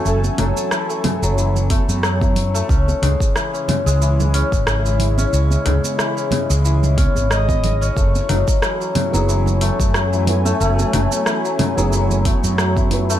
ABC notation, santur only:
X:1
M:4/4
L:1/16
Q:"Swing 16ths" 1/4=91
K:F#m
V:1 name="Santur" clef=bass
A, z F, z E, A, z F, E, z A,2 F, E,2 A, | C z G, z E, C z G, E, z C2 G, E,2 C | C z G, z E, C z G, E, z C2 G, E,2 C | A, z F, z E, F, z F, E, z A,2 F, E,2 A, |
A, z F, z E, F, z F, E, z A,2 F, E,2 A, |]